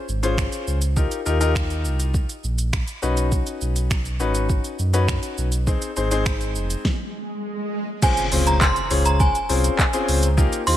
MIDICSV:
0, 0, Header, 1, 7, 480
1, 0, Start_track
1, 0, Tempo, 588235
1, 788, Time_signature, 4, 2, 24, 8
1, 8788, End_track
2, 0, Start_track
2, 0, Title_t, "Synth bell"
2, 0, Program_c, 0, 98
2, 6554, Note_on_c, 0, 80, 90
2, 6911, Note_on_c, 0, 82, 99
2, 6922, Note_off_c, 0, 80, 0
2, 7022, Note_off_c, 0, 82, 0
2, 7032, Note_on_c, 0, 84, 110
2, 7365, Note_off_c, 0, 84, 0
2, 7389, Note_on_c, 0, 82, 94
2, 7509, Note_on_c, 0, 80, 81
2, 7513, Note_off_c, 0, 82, 0
2, 8196, Note_off_c, 0, 80, 0
2, 8706, Note_on_c, 0, 84, 108
2, 8788, Note_off_c, 0, 84, 0
2, 8788, End_track
3, 0, Start_track
3, 0, Title_t, "Grand piano"
3, 0, Program_c, 1, 0
3, 186, Note_on_c, 1, 61, 88
3, 187, Note_on_c, 1, 65, 81
3, 189, Note_on_c, 1, 68, 78
3, 189, Note_on_c, 1, 72, 95
3, 627, Note_off_c, 1, 61, 0
3, 627, Note_off_c, 1, 65, 0
3, 628, Note_off_c, 1, 68, 0
3, 628, Note_off_c, 1, 72, 0
3, 785, Note_on_c, 1, 63, 88
3, 787, Note_on_c, 1, 65, 75
3, 788, Note_on_c, 1, 67, 77
3, 790, Note_on_c, 1, 70, 98
3, 963, Note_off_c, 1, 63, 0
3, 964, Note_off_c, 1, 65, 0
3, 964, Note_off_c, 1, 67, 0
3, 965, Note_off_c, 1, 70, 0
3, 1025, Note_on_c, 1, 63, 86
3, 1027, Note_on_c, 1, 65, 76
3, 1028, Note_on_c, 1, 67, 77
3, 1030, Note_on_c, 1, 70, 98
3, 1114, Note_off_c, 1, 63, 0
3, 1116, Note_off_c, 1, 65, 0
3, 1116, Note_off_c, 1, 67, 0
3, 1117, Note_off_c, 1, 70, 0
3, 1145, Note_on_c, 1, 63, 92
3, 1146, Note_on_c, 1, 65, 81
3, 1147, Note_on_c, 1, 67, 82
3, 1148, Note_on_c, 1, 70, 104
3, 1850, Note_off_c, 1, 63, 0
3, 1850, Note_off_c, 1, 65, 0
3, 1851, Note_off_c, 1, 67, 0
3, 1852, Note_off_c, 1, 70, 0
3, 2465, Note_on_c, 1, 61, 93
3, 2467, Note_on_c, 1, 63, 86
3, 2469, Note_on_c, 1, 66, 86
3, 2470, Note_on_c, 1, 71, 99
3, 3235, Note_off_c, 1, 61, 0
3, 3236, Note_off_c, 1, 63, 0
3, 3237, Note_off_c, 1, 66, 0
3, 3237, Note_off_c, 1, 71, 0
3, 3424, Note_on_c, 1, 61, 85
3, 3426, Note_on_c, 1, 63, 79
3, 3427, Note_on_c, 1, 66, 77
3, 3429, Note_on_c, 1, 71, 96
3, 3866, Note_off_c, 1, 61, 0
3, 3867, Note_off_c, 1, 63, 0
3, 3867, Note_off_c, 1, 66, 0
3, 3868, Note_off_c, 1, 71, 0
3, 4026, Note_on_c, 1, 61, 92
3, 4028, Note_on_c, 1, 63, 78
3, 4029, Note_on_c, 1, 66, 83
3, 4031, Note_on_c, 1, 71, 101
3, 4467, Note_off_c, 1, 61, 0
3, 4468, Note_off_c, 1, 63, 0
3, 4468, Note_off_c, 1, 66, 0
3, 4469, Note_off_c, 1, 71, 0
3, 4625, Note_on_c, 1, 60, 88
3, 4626, Note_on_c, 1, 63, 78
3, 4628, Note_on_c, 1, 68, 80
3, 4630, Note_on_c, 1, 72, 96
3, 4803, Note_off_c, 1, 60, 0
3, 4803, Note_off_c, 1, 63, 0
3, 4804, Note_off_c, 1, 68, 0
3, 4805, Note_off_c, 1, 72, 0
3, 4865, Note_on_c, 1, 60, 85
3, 4866, Note_on_c, 1, 63, 81
3, 4868, Note_on_c, 1, 68, 78
3, 4869, Note_on_c, 1, 72, 99
3, 4955, Note_off_c, 1, 60, 0
3, 4955, Note_off_c, 1, 63, 0
3, 4956, Note_off_c, 1, 68, 0
3, 4957, Note_off_c, 1, 72, 0
3, 4986, Note_on_c, 1, 60, 91
3, 4987, Note_on_c, 1, 63, 87
3, 4988, Note_on_c, 1, 68, 89
3, 4990, Note_on_c, 1, 72, 106
3, 5587, Note_off_c, 1, 60, 0
3, 5588, Note_off_c, 1, 63, 0
3, 5588, Note_off_c, 1, 68, 0
3, 5589, Note_off_c, 1, 72, 0
3, 6546, Note_on_c, 1, 60, 76
3, 6547, Note_on_c, 1, 61, 72
3, 6548, Note_on_c, 1, 65, 71
3, 6549, Note_on_c, 1, 68, 68
3, 6550, Note_on_c, 1, 72, 85
3, 6723, Note_off_c, 1, 60, 0
3, 6724, Note_off_c, 1, 61, 0
3, 6724, Note_off_c, 1, 65, 0
3, 6724, Note_off_c, 1, 68, 0
3, 6725, Note_off_c, 1, 72, 0
3, 6787, Note_on_c, 1, 60, 76
3, 6788, Note_on_c, 1, 61, 71
3, 6789, Note_on_c, 1, 65, 68
3, 6790, Note_on_c, 1, 68, 70
3, 6791, Note_on_c, 1, 72, 85
3, 7139, Note_off_c, 1, 60, 0
3, 7140, Note_off_c, 1, 61, 0
3, 7140, Note_off_c, 1, 65, 0
3, 7141, Note_off_c, 1, 68, 0
3, 7141, Note_off_c, 1, 72, 0
3, 7265, Note_on_c, 1, 72, 74
3, 7266, Note_on_c, 1, 61, 69
3, 7267, Note_on_c, 1, 65, 67
3, 7268, Note_on_c, 1, 68, 71
3, 7270, Note_on_c, 1, 73, 85
3, 7618, Note_off_c, 1, 72, 0
3, 7619, Note_off_c, 1, 61, 0
3, 7619, Note_off_c, 1, 65, 0
3, 7620, Note_off_c, 1, 68, 0
3, 7621, Note_off_c, 1, 73, 0
3, 7745, Note_on_c, 1, 60, 77
3, 7746, Note_on_c, 1, 61, 70
3, 7747, Note_on_c, 1, 65, 73
3, 7748, Note_on_c, 1, 68, 70
3, 7748, Note_on_c, 1, 72, 87
3, 8010, Note_off_c, 1, 60, 0
3, 8011, Note_off_c, 1, 61, 0
3, 8011, Note_off_c, 1, 65, 0
3, 8012, Note_off_c, 1, 68, 0
3, 8012, Note_off_c, 1, 72, 0
3, 8104, Note_on_c, 1, 60, 96
3, 8105, Note_on_c, 1, 61, 87
3, 8106, Note_on_c, 1, 68, 88
3, 8107, Note_on_c, 1, 65, 84
3, 8108, Note_on_c, 1, 72, 105
3, 8370, Note_off_c, 1, 60, 0
3, 8370, Note_off_c, 1, 61, 0
3, 8371, Note_off_c, 1, 65, 0
3, 8371, Note_off_c, 1, 68, 0
3, 8372, Note_off_c, 1, 72, 0
3, 8464, Note_on_c, 1, 58, 95
3, 8465, Note_on_c, 1, 63, 85
3, 8466, Note_on_c, 1, 65, 85
3, 8467, Note_on_c, 1, 67, 87
3, 8468, Note_on_c, 1, 70, 100
3, 8642, Note_off_c, 1, 58, 0
3, 8643, Note_off_c, 1, 63, 0
3, 8643, Note_off_c, 1, 65, 0
3, 8644, Note_off_c, 1, 67, 0
3, 8644, Note_off_c, 1, 70, 0
3, 8705, Note_on_c, 1, 58, 75
3, 8706, Note_on_c, 1, 63, 72
3, 8707, Note_on_c, 1, 65, 71
3, 8708, Note_on_c, 1, 67, 72
3, 8708, Note_on_c, 1, 72, 85
3, 8788, Note_off_c, 1, 58, 0
3, 8788, Note_off_c, 1, 63, 0
3, 8788, Note_off_c, 1, 65, 0
3, 8788, Note_off_c, 1, 67, 0
3, 8788, Note_off_c, 1, 72, 0
3, 8788, End_track
4, 0, Start_track
4, 0, Title_t, "Sub bass"
4, 0, Program_c, 2, 38
4, 69, Note_on_c, 2, 32, 100
4, 396, Note_off_c, 2, 32, 0
4, 547, Note_on_c, 2, 37, 96
4, 875, Note_off_c, 2, 37, 0
4, 1028, Note_on_c, 2, 39, 88
4, 1507, Note_on_c, 2, 36, 87
4, 1520, Note_off_c, 2, 39, 0
4, 1835, Note_off_c, 2, 36, 0
4, 1988, Note_on_c, 2, 34, 99
4, 2316, Note_off_c, 2, 34, 0
4, 2469, Note_on_c, 2, 35, 96
4, 2796, Note_off_c, 2, 35, 0
4, 2949, Note_on_c, 2, 35, 91
4, 3428, Note_on_c, 2, 32, 90
4, 3440, Note_off_c, 2, 35, 0
4, 3756, Note_off_c, 2, 32, 0
4, 3908, Note_on_c, 2, 42, 96
4, 4236, Note_off_c, 2, 42, 0
4, 4388, Note_on_c, 2, 35, 100
4, 4715, Note_off_c, 2, 35, 0
4, 4869, Note_on_c, 2, 32, 92
4, 5349, Note_on_c, 2, 29, 89
4, 5361, Note_off_c, 2, 32, 0
4, 5513, Note_off_c, 2, 29, 0
4, 6788, Note_on_c, 2, 37, 89
4, 7116, Note_off_c, 2, 37, 0
4, 7267, Note_on_c, 2, 37, 90
4, 7595, Note_off_c, 2, 37, 0
4, 7746, Note_on_c, 2, 36, 90
4, 7911, Note_off_c, 2, 36, 0
4, 8228, Note_on_c, 2, 37, 96
4, 8555, Note_off_c, 2, 37, 0
4, 8706, Note_on_c, 2, 39, 89
4, 8788, Note_off_c, 2, 39, 0
4, 8788, End_track
5, 0, Start_track
5, 0, Title_t, "Impact"
5, 0, Program_c, 3, 103
5, 6548, Note_on_c, 3, 60, 88
5, 8468, Note_off_c, 3, 60, 0
5, 8788, End_track
6, 0, Start_track
6, 0, Title_t, "Swell"
6, 0, Program_c, 4, 103
6, 4629, Note_on_c, 4, 60, 84
6, 6549, Note_off_c, 4, 60, 0
6, 8788, End_track
7, 0, Start_track
7, 0, Title_t, "Drums"
7, 70, Note_on_c, 9, 82, 51
7, 152, Note_off_c, 9, 82, 0
7, 190, Note_on_c, 9, 42, 64
7, 190, Note_on_c, 9, 82, 64
7, 272, Note_off_c, 9, 42, 0
7, 272, Note_off_c, 9, 82, 0
7, 309, Note_on_c, 9, 36, 102
7, 311, Note_on_c, 9, 82, 65
7, 312, Note_on_c, 9, 26, 101
7, 390, Note_off_c, 9, 36, 0
7, 393, Note_off_c, 9, 26, 0
7, 393, Note_off_c, 9, 82, 0
7, 427, Note_on_c, 9, 42, 58
7, 427, Note_on_c, 9, 82, 58
7, 509, Note_off_c, 9, 42, 0
7, 509, Note_off_c, 9, 82, 0
7, 551, Note_on_c, 9, 82, 57
7, 632, Note_off_c, 9, 82, 0
7, 666, Note_on_c, 9, 42, 74
7, 666, Note_on_c, 9, 82, 75
7, 747, Note_off_c, 9, 42, 0
7, 747, Note_off_c, 9, 82, 0
7, 789, Note_on_c, 9, 36, 106
7, 789, Note_on_c, 9, 82, 80
7, 870, Note_off_c, 9, 36, 0
7, 870, Note_off_c, 9, 82, 0
7, 909, Note_on_c, 9, 42, 60
7, 909, Note_on_c, 9, 82, 61
7, 991, Note_off_c, 9, 42, 0
7, 991, Note_off_c, 9, 82, 0
7, 1029, Note_on_c, 9, 82, 67
7, 1111, Note_off_c, 9, 82, 0
7, 1150, Note_on_c, 9, 42, 68
7, 1150, Note_on_c, 9, 82, 69
7, 1231, Note_off_c, 9, 42, 0
7, 1231, Note_off_c, 9, 82, 0
7, 1269, Note_on_c, 9, 36, 113
7, 1271, Note_on_c, 9, 82, 77
7, 1273, Note_on_c, 9, 26, 110
7, 1350, Note_off_c, 9, 36, 0
7, 1353, Note_off_c, 9, 82, 0
7, 1355, Note_off_c, 9, 26, 0
7, 1390, Note_on_c, 9, 42, 46
7, 1390, Note_on_c, 9, 82, 45
7, 1471, Note_off_c, 9, 42, 0
7, 1471, Note_off_c, 9, 82, 0
7, 1508, Note_on_c, 9, 82, 60
7, 1590, Note_off_c, 9, 82, 0
7, 1629, Note_on_c, 9, 42, 77
7, 1629, Note_on_c, 9, 82, 73
7, 1711, Note_off_c, 9, 42, 0
7, 1711, Note_off_c, 9, 82, 0
7, 1748, Note_on_c, 9, 36, 109
7, 1748, Note_on_c, 9, 82, 66
7, 1830, Note_off_c, 9, 36, 0
7, 1830, Note_off_c, 9, 82, 0
7, 1872, Note_on_c, 9, 42, 50
7, 1872, Note_on_c, 9, 82, 51
7, 1953, Note_off_c, 9, 42, 0
7, 1953, Note_off_c, 9, 82, 0
7, 1989, Note_on_c, 9, 82, 51
7, 2071, Note_off_c, 9, 82, 0
7, 2109, Note_on_c, 9, 42, 62
7, 2109, Note_on_c, 9, 82, 67
7, 2190, Note_off_c, 9, 42, 0
7, 2190, Note_off_c, 9, 82, 0
7, 2228, Note_on_c, 9, 36, 102
7, 2229, Note_on_c, 9, 82, 65
7, 2230, Note_on_c, 9, 26, 95
7, 2309, Note_off_c, 9, 36, 0
7, 2311, Note_off_c, 9, 26, 0
7, 2311, Note_off_c, 9, 82, 0
7, 2346, Note_on_c, 9, 42, 57
7, 2346, Note_on_c, 9, 82, 60
7, 2427, Note_off_c, 9, 42, 0
7, 2427, Note_off_c, 9, 82, 0
7, 2469, Note_on_c, 9, 82, 56
7, 2551, Note_off_c, 9, 82, 0
7, 2587, Note_on_c, 9, 42, 73
7, 2587, Note_on_c, 9, 82, 76
7, 2669, Note_off_c, 9, 42, 0
7, 2669, Note_off_c, 9, 82, 0
7, 2708, Note_on_c, 9, 82, 84
7, 2709, Note_on_c, 9, 36, 101
7, 2790, Note_off_c, 9, 36, 0
7, 2790, Note_off_c, 9, 82, 0
7, 2827, Note_on_c, 9, 42, 60
7, 2827, Note_on_c, 9, 82, 60
7, 2909, Note_off_c, 9, 42, 0
7, 2909, Note_off_c, 9, 82, 0
7, 2947, Note_on_c, 9, 82, 68
7, 3029, Note_off_c, 9, 82, 0
7, 3068, Note_on_c, 9, 42, 71
7, 3068, Note_on_c, 9, 82, 69
7, 3149, Note_off_c, 9, 42, 0
7, 3149, Note_off_c, 9, 82, 0
7, 3188, Note_on_c, 9, 36, 123
7, 3188, Note_on_c, 9, 82, 77
7, 3190, Note_on_c, 9, 26, 108
7, 3270, Note_off_c, 9, 36, 0
7, 3270, Note_off_c, 9, 82, 0
7, 3271, Note_off_c, 9, 26, 0
7, 3308, Note_on_c, 9, 42, 44
7, 3308, Note_on_c, 9, 82, 44
7, 3389, Note_off_c, 9, 42, 0
7, 3389, Note_off_c, 9, 82, 0
7, 3426, Note_on_c, 9, 82, 58
7, 3508, Note_off_c, 9, 82, 0
7, 3547, Note_on_c, 9, 42, 74
7, 3547, Note_on_c, 9, 82, 78
7, 3629, Note_off_c, 9, 42, 0
7, 3629, Note_off_c, 9, 82, 0
7, 3667, Note_on_c, 9, 82, 66
7, 3668, Note_on_c, 9, 36, 111
7, 3748, Note_off_c, 9, 82, 0
7, 3750, Note_off_c, 9, 36, 0
7, 3789, Note_on_c, 9, 42, 51
7, 3789, Note_on_c, 9, 82, 50
7, 3871, Note_off_c, 9, 42, 0
7, 3871, Note_off_c, 9, 82, 0
7, 3908, Note_on_c, 9, 82, 51
7, 3990, Note_off_c, 9, 82, 0
7, 4028, Note_on_c, 9, 42, 65
7, 4028, Note_on_c, 9, 82, 66
7, 4110, Note_off_c, 9, 42, 0
7, 4110, Note_off_c, 9, 82, 0
7, 4147, Note_on_c, 9, 36, 107
7, 4149, Note_on_c, 9, 26, 96
7, 4149, Note_on_c, 9, 82, 68
7, 4229, Note_off_c, 9, 36, 0
7, 4231, Note_off_c, 9, 26, 0
7, 4231, Note_off_c, 9, 82, 0
7, 4265, Note_on_c, 9, 42, 60
7, 4265, Note_on_c, 9, 82, 59
7, 4347, Note_off_c, 9, 42, 0
7, 4347, Note_off_c, 9, 82, 0
7, 4388, Note_on_c, 9, 82, 56
7, 4470, Note_off_c, 9, 82, 0
7, 4504, Note_on_c, 9, 42, 74
7, 4504, Note_on_c, 9, 82, 75
7, 4586, Note_off_c, 9, 42, 0
7, 4586, Note_off_c, 9, 82, 0
7, 4628, Note_on_c, 9, 36, 112
7, 4628, Note_on_c, 9, 82, 81
7, 4709, Note_off_c, 9, 82, 0
7, 4710, Note_off_c, 9, 36, 0
7, 4747, Note_on_c, 9, 42, 60
7, 4747, Note_on_c, 9, 82, 59
7, 4829, Note_off_c, 9, 42, 0
7, 4829, Note_off_c, 9, 82, 0
7, 4867, Note_on_c, 9, 82, 65
7, 4949, Note_off_c, 9, 82, 0
7, 4989, Note_on_c, 9, 42, 74
7, 4989, Note_on_c, 9, 82, 70
7, 5070, Note_off_c, 9, 42, 0
7, 5070, Note_off_c, 9, 82, 0
7, 5108, Note_on_c, 9, 36, 121
7, 5108, Note_on_c, 9, 82, 80
7, 5109, Note_on_c, 9, 26, 108
7, 5189, Note_off_c, 9, 36, 0
7, 5189, Note_off_c, 9, 82, 0
7, 5191, Note_off_c, 9, 26, 0
7, 5228, Note_on_c, 9, 42, 43
7, 5228, Note_on_c, 9, 82, 45
7, 5310, Note_off_c, 9, 42, 0
7, 5310, Note_off_c, 9, 82, 0
7, 5348, Note_on_c, 9, 82, 59
7, 5430, Note_off_c, 9, 82, 0
7, 5470, Note_on_c, 9, 42, 74
7, 5470, Note_on_c, 9, 82, 78
7, 5551, Note_off_c, 9, 42, 0
7, 5551, Note_off_c, 9, 82, 0
7, 5588, Note_on_c, 9, 36, 107
7, 5589, Note_on_c, 9, 38, 82
7, 5670, Note_off_c, 9, 36, 0
7, 5671, Note_off_c, 9, 38, 0
7, 6548, Note_on_c, 9, 36, 109
7, 6548, Note_on_c, 9, 49, 106
7, 6548, Note_on_c, 9, 82, 84
7, 6630, Note_off_c, 9, 36, 0
7, 6630, Note_off_c, 9, 49, 0
7, 6630, Note_off_c, 9, 82, 0
7, 6668, Note_on_c, 9, 42, 63
7, 6668, Note_on_c, 9, 82, 64
7, 6750, Note_off_c, 9, 42, 0
7, 6750, Note_off_c, 9, 82, 0
7, 6787, Note_on_c, 9, 46, 95
7, 6787, Note_on_c, 9, 82, 68
7, 6869, Note_off_c, 9, 46, 0
7, 6869, Note_off_c, 9, 82, 0
7, 6909, Note_on_c, 9, 42, 77
7, 6909, Note_on_c, 9, 82, 73
7, 6990, Note_off_c, 9, 42, 0
7, 6990, Note_off_c, 9, 82, 0
7, 7028, Note_on_c, 9, 36, 119
7, 7029, Note_on_c, 9, 82, 85
7, 7030, Note_on_c, 9, 39, 113
7, 7109, Note_off_c, 9, 36, 0
7, 7110, Note_off_c, 9, 82, 0
7, 7112, Note_off_c, 9, 39, 0
7, 7148, Note_on_c, 9, 42, 48
7, 7148, Note_on_c, 9, 82, 49
7, 7230, Note_off_c, 9, 42, 0
7, 7230, Note_off_c, 9, 82, 0
7, 7268, Note_on_c, 9, 46, 86
7, 7268, Note_on_c, 9, 82, 61
7, 7349, Note_off_c, 9, 46, 0
7, 7349, Note_off_c, 9, 82, 0
7, 7389, Note_on_c, 9, 42, 79
7, 7389, Note_on_c, 9, 82, 79
7, 7471, Note_off_c, 9, 42, 0
7, 7471, Note_off_c, 9, 82, 0
7, 7508, Note_on_c, 9, 36, 118
7, 7508, Note_on_c, 9, 82, 65
7, 7589, Note_off_c, 9, 36, 0
7, 7589, Note_off_c, 9, 82, 0
7, 7630, Note_on_c, 9, 42, 54
7, 7630, Note_on_c, 9, 82, 54
7, 7711, Note_off_c, 9, 42, 0
7, 7711, Note_off_c, 9, 82, 0
7, 7748, Note_on_c, 9, 46, 75
7, 7748, Note_on_c, 9, 82, 56
7, 7830, Note_off_c, 9, 46, 0
7, 7830, Note_off_c, 9, 82, 0
7, 7868, Note_on_c, 9, 42, 70
7, 7868, Note_on_c, 9, 82, 71
7, 7950, Note_off_c, 9, 42, 0
7, 7950, Note_off_c, 9, 82, 0
7, 7987, Note_on_c, 9, 36, 108
7, 7989, Note_on_c, 9, 39, 101
7, 7989, Note_on_c, 9, 82, 71
7, 8069, Note_off_c, 9, 36, 0
7, 8071, Note_off_c, 9, 39, 0
7, 8071, Note_off_c, 9, 82, 0
7, 8106, Note_on_c, 9, 42, 62
7, 8106, Note_on_c, 9, 82, 59
7, 8187, Note_off_c, 9, 42, 0
7, 8187, Note_off_c, 9, 82, 0
7, 8229, Note_on_c, 9, 46, 80
7, 8229, Note_on_c, 9, 82, 59
7, 8311, Note_off_c, 9, 46, 0
7, 8311, Note_off_c, 9, 82, 0
7, 8346, Note_on_c, 9, 42, 81
7, 8346, Note_on_c, 9, 82, 79
7, 8428, Note_off_c, 9, 42, 0
7, 8428, Note_off_c, 9, 82, 0
7, 8468, Note_on_c, 9, 36, 107
7, 8469, Note_on_c, 9, 82, 84
7, 8550, Note_off_c, 9, 36, 0
7, 8550, Note_off_c, 9, 82, 0
7, 8589, Note_on_c, 9, 42, 62
7, 8589, Note_on_c, 9, 82, 61
7, 8671, Note_off_c, 9, 42, 0
7, 8671, Note_off_c, 9, 82, 0
7, 8707, Note_on_c, 9, 46, 97
7, 8707, Note_on_c, 9, 82, 70
7, 8788, Note_off_c, 9, 46, 0
7, 8788, Note_off_c, 9, 82, 0
7, 8788, End_track
0, 0, End_of_file